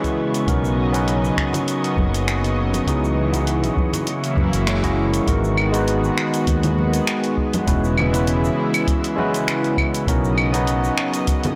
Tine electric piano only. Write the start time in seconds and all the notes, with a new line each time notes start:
Already playing: G#3 C#4 E4 F#4 B4
0.47 B3 C#4 D#4 F#4 A#4
0.92 B3 C#4 D#4 F#4 B4
2.87 B3 D#4 E4 F#4 G#4
3.32 B3 D#4 E4 F#4
3.36 G#4
4.67 G#3 C#4 E4 F#4 C#5
4.83 G#3 C#4 E4 F#4 D#5
5.26 G#3 B3 D#4 F#4 A#4
5.72 G#3 B3 D#4 F#4 B4
7.66 G#3 C#4 E4 F#4 B4
8.12 G#3 C#4 E4 F#4 B4
9.16 G#3 C#4 E4 F#4 B4
10.07 B3 C#4 D#4 F#4 A#4
10.52 B3 C#4 D#4 F#4 B4